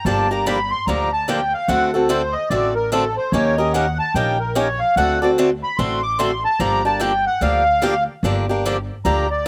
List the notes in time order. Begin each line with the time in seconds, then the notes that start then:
0.05 G1 D3 F3 A#3 D4 G4 A5
0.31 A#3 D4 G4 A#5
0.46 D3 F3 A#3 D4 G4 B5
0.71 C6
0.87 D2 D3 F3 A#3 D4 G4 A#5
1.13 A5
1.28 D3 F3 A#3 D4 G4 G5
1.54 F5
1.68 D2 D3 A3 C4 F#4 A4 F#5
1.93 C4 F#4 A4
2.09 D3 A3 C4 F#4 A4 C5
2.32 D#5
2.49 A1 D3 A3 C4 F#4 A4 D5
2.75 A#4
2.92 D3 A3 C4 F#4 A4
3.17 C5
3.32 D#2 D#3 A#3 C#4 G4 A#4 C#5
3.57 C#4 G4 A#4 D#5
3.73 D#3 A#3 C#4 G4 A#4 F#5
3.99 A5
4.14 A#1 D#3 A#3 C#4 G4 A#4 G5
4.40 A#4
4.55 D#3 A#3 C#4 G4 A#4 C#5
4.79 F5
4.96 D2 D3 A3 C4 F#4 A4 F#5
5.21 C4 F#4 A4 D5
5.38 D3 A3 C4 F#4 A4
5.63 B5
5.77 A1 D3 A3 C4 F#4 A4 C6
6.03 D6
6.19 D3 A3 C4 F#4 A4 C6
6.45 A5
6.59 G1 D3 F3 A#3 D4 G4 A#5
6.85 A#3 D4 G4 A5
7.00 D3 F3 A#3 D4 G4 G5
7.27 F#5
7.41 D2 D3 F3 A#3 D4 G4 F5
7.82 D3 F3 A#3 D4 G4
8.23 G1 D3 F3 A#3 D4 G4
8.49 A#3 D4 G4
8.65 D3 F3 A#3 D4 G4
9.05 D2 D3 F3 A#3 D4 G4 A#5
9.31 D5